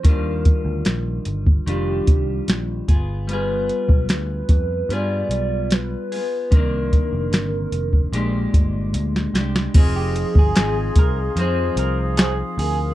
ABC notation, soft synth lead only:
X:1
M:4/4
L:1/8
Q:1/4=74
K:Fdor
V:1 name="Soft synth lead"
B3 z G3 z | =B2 B2 d2 B2 | B6 z2 | A4 c2 c B |]